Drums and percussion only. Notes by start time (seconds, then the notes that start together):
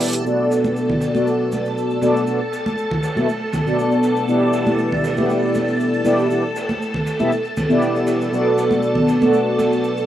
0.01 open hi-hat, cabasa
0.13 closed hi-hat, cabasa
0.26 cabasa
0.51 open hi-hat, cabasa
0.64 high conga, cabasa
0.76 cabasa
0.90 low conga
1.00 open hi-hat, cabasa
1.15 high conga, cabasa
1.27 cabasa
1.52 open hi-hat, high conga, cabasa
1.65 cabasa
1.78 cabasa
1.90 cabasa
2.01 open hi-hat, high conga, cabasa
2.16 cabasa
2.27 cabasa
2.52 open hi-hat, cabasa
2.66 high conga, cabasa
2.78 cabasa
2.91 open hi-hat, low conga
3.03 open hi-hat, cabasa
3.17 high conga, cabasa
3.29 cabasa
3.52 open hi-hat, high conga, low conga, cabasa
3.67 cabasa
3.79 cabasa
3.91 cabasa
4.03 open hi-hat, cabasa
4.16 cabasa
4.28 cabasa
4.53 open hi-hat, cabasa
4.66 high conga, cabasa
4.78 cabasa
4.92 low conga
5.04 open hi-hat, cabasa
5.17 high conga, cabasa
5.30 cabasa
5.55 open hi-hat, high conga, cabasa
5.68 cabasa
5.80 cabasa
5.94 cabasa
6.05 open hi-hat, high conga, cabasa
6.19 cabasa
6.31 cabasa
6.56 open hi-hat, cabasa
6.69 high conga, cabasa
6.82 cabasa
6.94 open hi-hat, low conga
7.07 open hi-hat, cabasa
7.19 high conga, cabasa
7.32 cabasa
7.45 cabasa
7.57 open hi-hat, high conga, low conga, cabasa
7.70 cabasa
7.82 cabasa
7.96 cabasa
8.07 open hi-hat, cabasa
8.21 cabasa
8.33 cabasa
8.58 open hi-hat, cabasa
8.71 high conga, cabasa
8.83 cabasa
8.95 low conga
9.08 open hi-hat, cabasa
9.22 high conga, cabasa
9.34 cabasa
9.58 open hi-hat, high conga, cabasa
9.72 cabasa
9.84 cabasa
9.97 cabasa